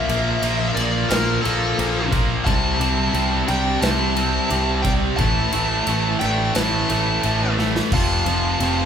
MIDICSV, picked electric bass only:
0, 0, Header, 1, 2, 480
1, 0, Start_track
1, 0, Tempo, 681044
1, 1737, Time_signature, 4, 2, 24, 8
1, 6240, End_track
2, 0, Start_track
2, 0, Title_t, "Picked electric bass"
2, 0, Program_c, 0, 34
2, 64, Note_on_c, 0, 34, 86
2, 258, Note_off_c, 0, 34, 0
2, 298, Note_on_c, 0, 34, 91
2, 494, Note_off_c, 0, 34, 0
2, 537, Note_on_c, 0, 34, 91
2, 733, Note_off_c, 0, 34, 0
2, 776, Note_on_c, 0, 34, 100
2, 972, Note_off_c, 0, 34, 0
2, 1018, Note_on_c, 0, 34, 91
2, 1213, Note_off_c, 0, 34, 0
2, 1259, Note_on_c, 0, 34, 100
2, 1647, Note_off_c, 0, 34, 0
2, 1738, Note_on_c, 0, 36, 96
2, 1932, Note_off_c, 0, 36, 0
2, 1974, Note_on_c, 0, 36, 91
2, 2170, Note_off_c, 0, 36, 0
2, 2210, Note_on_c, 0, 36, 95
2, 2408, Note_off_c, 0, 36, 0
2, 2457, Note_on_c, 0, 36, 89
2, 2651, Note_off_c, 0, 36, 0
2, 2694, Note_on_c, 0, 36, 105
2, 3085, Note_off_c, 0, 36, 0
2, 3179, Note_on_c, 0, 36, 100
2, 3568, Note_off_c, 0, 36, 0
2, 3658, Note_on_c, 0, 33, 101
2, 3853, Note_off_c, 0, 33, 0
2, 3902, Note_on_c, 0, 33, 84
2, 4096, Note_off_c, 0, 33, 0
2, 4139, Note_on_c, 0, 33, 98
2, 4335, Note_off_c, 0, 33, 0
2, 4383, Note_on_c, 0, 33, 89
2, 4577, Note_off_c, 0, 33, 0
2, 4625, Note_on_c, 0, 33, 102
2, 4819, Note_off_c, 0, 33, 0
2, 4862, Note_on_c, 0, 33, 90
2, 5058, Note_off_c, 0, 33, 0
2, 5104, Note_on_c, 0, 33, 98
2, 5494, Note_off_c, 0, 33, 0
2, 5580, Note_on_c, 0, 29, 94
2, 5777, Note_off_c, 0, 29, 0
2, 5822, Note_on_c, 0, 29, 90
2, 6019, Note_off_c, 0, 29, 0
2, 6063, Note_on_c, 0, 29, 94
2, 6240, Note_off_c, 0, 29, 0
2, 6240, End_track
0, 0, End_of_file